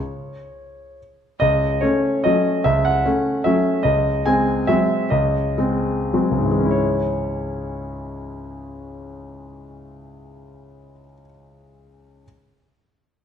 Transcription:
0, 0, Header, 1, 2, 480
1, 0, Start_track
1, 0, Key_signature, 4, "minor"
1, 0, Tempo, 427960
1, 119, Time_signature, 3, 2, 24, 8
1, 2520, Tempo, 399467
1, 4920, Tempo, 444774
1, 6360, Tempo, 568720
1, 8280, Tempo, 552995
1, 10200, Tempo, 541516
1, 13022, End_track
2, 0, Start_track
2, 0, Title_t, "Grand piano"
2, 0, Program_c, 0, 0
2, 0, Note_on_c, 0, 73, 48
2, 353, Control_c, 0, 64, 127
2, 1100, Note_off_c, 0, 73, 0
2, 1107, Control_c, 0, 64, 0
2, 1567, Note_on_c, 0, 75, 66
2, 1585, Note_on_c, 0, 37, 38
2, 1800, Control_c, 0, 64, 127
2, 2027, Note_on_c, 0, 73, 45
2, 2030, Note_off_c, 0, 37, 0
2, 2034, Note_off_c, 0, 75, 0
2, 2045, Note_on_c, 0, 57, 28
2, 2048, Note_on_c, 0, 61, 30
2, 2056, Control_c, 0, 64, 0
2, 2477, Note_off_c, 0, 57, 0
2, 2479, Note_off_c, 0, 61, 0
2, 2509, Note_on_c, 0, 75, 52
2, 2513, Note_off_c, 0, 73, 0
2, 2529, Note_on_c, 0, 54, 31
2, 2533, Note_on_c, 0, 57, 27
2, 2538, Note_on_c, 0, 61, 32
2, 2969, Note_off_c, 0, 54, 0
2, 2971, Note_off_c, 0, 57, 0
2, 2973, Note_off_c, 0, 61, 0
2, 2996, Note_on_c, 0, 76, 61
2, 3006, Note_off_c, 0, 75, 0
2, 3007, Note_on_c, 0, 37, 38
2, 3237, Note_off_c, 0, 76, 0
2, 3242, Note_on_c, 0, 78, 51
2, 3243, Control_c, 0, 64, 127
2, 3468, Note_off_c, 0, 37, 0
2, 3489, Note_on_c, 0, 57, 27
2, 3489, Note_on_c, 0, 61, 28
2, 3497, Control_c, 0, 64, 0
2, 3920, Note_off_c, 0, 57, 0
2, 3920, Note_off_c, 0, 61, 0
2, 3957, Note_on_c, 0, 76, 54
2, 3964, Note_off_c, 0, 78, 0
2, 3974, Note_on_c, 0, 54, 28
2, 3978, Note_on_c, 0, 57, 27
2, 3979, Note_on_c, 0, 61, 29
2, 4393, Note_off_c, 0, 54, 0
2, 4395, Note_off_c, 0, 57, 0
2, 4396, Note_off_c, 0, 61, 0
2, 4422, Note_on_c, 0, 75, 55
2, 4431, Note_off_c, 0, 76, 0
2, 4443, Note_on_c, 0, 37, 35
2, 4705, Control_c, 0, 64, 127
2, 4909, Note_off_c, 0, 37, 0
2, 4913, Note_off_c, 0, 75, 0
2, 4933, Note_on_c, 0, 80, 58
2, 4940, Note_on_c, 0, 56, 27
2, 4945, Note_on_c, 0, 60, 29
2, 5350, Note_off_c, 0, 56, 0
2, 5353, Note_off_c, 0, 60, 0
2, 5384, Note_on_c, 0, 76, 64
2, 5390, Note_off_c, 0, 80, 0
2, 5392, Control_c, 0, 64, 0
2, 5395, Note_on_c, 0, 54, 29
2, 5396, Note_on_c, 0, 56, 27
2, 5405, Note_on_c, 0, 60, 30
2, 5819, Note_off_c, 0, 54, 0
2, 5819, Note_off_c, 0, 56, 0
2, 5824, Note_off_c, 0, 60, 0
2, 5847, Note_on_c, 0, 75, 45
2, 5856, Note_off_c, 0, 76, 0
2, 5859, Note_on_c, 0, 37, 34
2, 6090, Control_c, 0, 64, 127
2, 6346, Note_off_c, 0, 37, 0
2, 6361, Note_on_c, 0, 56, 26
2, 6370, Note_on_c, 0, 60, 28
2, 6787, Note_off_c, 0, 56, 0
2, 6791, Note_off_c, 0, 60, 0
2, 6830, Note_on_c, 0, 54, 25
2, 6830, Note_on_c, 0, 56, 23
2, 6833, Control_c, 0, 64, 0
2, 6836, Note_on_c, 0, 60, 27
2, 6980, Note_on_c, 0, 37, 27
2, 7035, Note_on_c, 0, 44, 22
2, 7074, Note_off_c, 0, 75, 0
2, 7093, Note_on_c, 0, 52, 22
2, 7138, Note_off_c, 0, 56, 0
2, 7151, Note_on_c, 0, 56, 21
2, 7210, Note_on_c, 0, 61, 22
2, 7266, Note_on_c, 0, 64, 23
2, 7296, Note_off_c, 0, 54, 0
2, 7299, Note_off_c, 0, 60, 0
2, 7313, Note_on_c, 0, 73, 31
2, 7537, Control_c, 0, 64, 127
2, 10955, Note_off_c, 0, 37, 0
2, 11013, Note_off_c, 0, 44, 0
2, 11074, Note_off_c, 0, 52, 0
2, 11134, Note_off_c, 0, 56, 0
2, 11196, Note_off_c, 0, 61, 0
2, 11255, Note_off_c, 0, 64, 0
2, 11305, Note_off_c, 0, 73, 0
2, 12130, Control_c, 0, 64, 0
2, 13022, End_track
0, 0, End_of_file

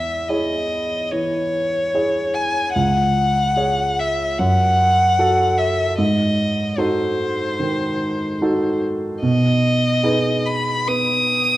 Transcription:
0, 0, Header, 1, 3, 480
1, 0, Start_track
1, 0, Key_signature, 4, "minor"
1, 0, Tempo, 835655
1, 642, Tempo, 815217
1, 1601, Time_signature, 4, 2, 24, 8
1, 2562, Tempo, 798935
1, 4002, Tempo, 819672
1, 6811, End_track
2, 0, Start_track
2, 0, Title_t, "Violin"
2, 0, Program_c, 0, 40
2, 0, Note_on_c, 0, 76, 48
2, 164, Note_on_c, 0, 75, 49
2, 172, Note_off_c, 0, 76, 0
2, 639, Note_on_c, 0, 73, 57
2, 648, Note_off_c, 0, 75, 0
2, 1364, Note_on_c, 0, 80, 55
2, 1373, Note_off_c, 0, 73, 0
2, 1591, Note_off_c, 0, 80, 0
2, 1595, Note_on_c, 0, 78, 62
2, 2332, Note_on_c, 0, 76, 52
2, 2341, Note_off_c, 0, 78, 0
2, 2566, Note_on_c, 0, 78, 67
2, 2575, Note_off_c, 0, 76, 0
2, 3284, Note_on_c, 0, 76, 54
2, 3293, Note_off_c, 0, 78, 0
2, 3524, Note_off_c, 0, 76, 0
2, 3527, Note_on_c, 0, 75, 53
2, 4008, Note_on_c, 0, 72, 53
2, 4017, Note_off_c, 0, 75, 0
2, 5205, Note_off_c, 0, 72, 0
2, 5434, Note_on_c, 0, 75, 68
2, 6158, Note_on_c, 0, 83, 62
2, 6167, Note_off_c, 0, 75, 0
2, 6404, Note_on_c, 0, 87, 81
2, 6413, Note_off_c, 0, 83, 0
2, 6811, Note_off_c, 0, 87, 0
2, 6811, End_track
3, 0, Start_track
3, 0, Title_t, "Grand piano"
3, 0, Program_c, 1, 0
3, 0, Control_c, 1, 64, 127
3, 0, Note_on_c, 1, 40, 35
3, 149, Note_off_c, 1, 40, 0
3, 167, Note_on_c, 1, 64, 24
3, 170, Note_on_c, 1, 68, 24
3, 173, Note_on_c, 1, 73, 25
3, 621, Note_off_c, 1, 64, 0
3, 623, Note_off_c, 1, 68, 0
3, 624, Note_off_c, 1, 73, 0
3, 645, Note_on_c, 1, 52, 28
3, 1128, Note_on_c, 1, 64, 25
3, 1130, Note_on_c, 1, 68, 26
3, 1134, Note_on_c, 1, 73, 26
3, 1412, Note_off_c, 1, 52, 0
3, 1581, Note_off_c, 1, 64, 0
3, 1582, Note_off_c, 1, 68, 0
3, 1584, Note_off_c, 1, 73, 0
3, 1607, Note_on_c, 1, 37, 34
3, 1610, Control_c, 1, 64, 0
3, 1713, Control_c, 1, 64, 127
3, 2069, Note_off_c, 1, 37, 0
3, 2083, Note_on_c, 1, 68, 25
3, 2088, Note_on_c, 1, 73, 29
3, 2539, Note_off_c, 1, 68, 0
3, 2542, Note_off_c, 1, 73, 0
3, 2570, Note_on_c, 1, 42, 36
3, 2572, Control_c, 1, 64, 0
3, 2679, Control_c, 1, 64, 127
3, 3033, Note_off_c, 1, 42, 0
3, 3049, Note_on_c, 1, 66, 26
3, 3051, Note_on_c, 1, 69, 31
3, 3503, Note_off_c, 1, 66, 0
3, 3503, Note_off_c, 1, 69, 0
3, 3526, Note_on_c, 1, 44, 35
3, 3534, Control_c, 1, 64, 0
3, 3618, Control_c, 1, 64, 127
3, 3988, Note_off_c, 1, 44, 0
3, 4005, Note_on_c, 1, 63, 27
3, 4005, Note_on_c, 1, 66, 28
3, 4007, Note_on_c, 1, 69, 30
3, 4457, Note_off_c, 1, 63, 0
3, 4458, Note_off_c, 1, 66, 0
3, 4458, Note_off_c, 1, 69, 0
3, 4483, Note_on_c, 1, 51, 30
3, 4962, Note_on_c, 1, 63, 29
3, 4965, Note_on_c, 1, 66, 27
3, 4967, Note_on_c, 1, 69, 30
3, 5251, Note_off_c, 1, 51, 0
3, 5414, Note_off_c, 1, 63, 0
3, 5415, Note_off_c, 1, 66, 0
3, 5416, Note_off_c, 1, 69, 0
3, 5436, Note_on_c, 1, 47, 41
3, 5447, Control_c, 1, 64, 0
3, 5550, Control_c, 1, 64, 127
3, 5898, Note_off_c, 1, 47, 0
3, 5910, Note_on_c, 1, 68, 30
3, 5912, Note_on_c, 1, 63, 29
3, 5917, Note_on_c, 1, 71, 34
3, 6380, Note_off_c, 1, 68, 0
3, 6381, Note_off_c, 1, 63, 0
3, 6383, Note_off_c, 1, 71, 0
3, 6405, Note_on_c, 1, 59, 32
3, 6811, Note_off_c, 1, 59, 0
3, 6811, End_track
0, 0, End_of_file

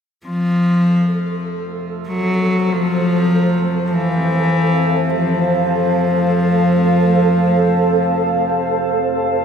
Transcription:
0, 0, Header, 1, 5, 480
1, 0, Start_track
1, 0, Key_signature, -1, "major"
1, 0, Tempo, 500000
1, 9070, End_track
2, 0, Start_track
2, 0, Title_t, "Ambient pad"
2, 0, Program_c, 0, 92
2, 215, Note_on_c, 0, 69, 68
2, 1736, Note_on_c, 0, 72, 61
2, 1898, Note_on_c, 0, 81, 67
2, 2739, Note_on_c, 0, 77, 66
2, 9070, Note_off_c, 0, 69, 0
2, 9070, Note_off_c, 0, 72, 0
2, 9070, Note_off_c, 0, 77, 0
2, 9070, Note_off_c, 0, 81, 0
2, 9070, End_track
3, 0, Start_track
3, 0, Title_t, "Singing bowl"
3, 0, Program_c, 1, 14
3, 237, Note_on_c, 1, 60, 60
3, 242, Note_on_c, 1, 84, 58
3, 9070, Note_off_c, 1, 60, 0
3, 9070, Note_off_c, 1, 84, 0
3, 9070, End_track
4, 0, Start_track
4, 0, Title_t, "Cello"
4, 0, Program_c, 2, 42
4, 237, Note_on_c, 2, 53, 94
4, 1372, Note_off_c, 2, 53, 0
4, 1992, Note_on_c, 2, 54, 79
4, 2610, Note_on_c, 2, 53, 87
4, 2625, Note_off_c, 2, 54, 0
4, 3716, Note_off_c, 2, 53, 0
4, 3716, Note_on_c, 2, 53, 51
4, 3739, Note_on_c, 2, 52, 81
4, 3754, Note_off_c, 2, 53, 0
4, 4894, Note_on_c, 2, 53, 84
4, 4908, Note_off_c, 2, 52, 0
4, 8441, Note_off_c, 2, 53, 0
4, 9070, End_track
5, 0, Start_track
5, 0, Title_t, "Synth drone"
5, 0, Program_c, 3, 95
5, 239, Note_on_c, 3, 48, 61
5, 241, Note_on_c, 3, 41, 60
5, 9070, Note_off_c, 3, 41, 0
5, 9070, Note_off_c, 3, 48, 0
5, 9070, End_track
0, 0, End_of_file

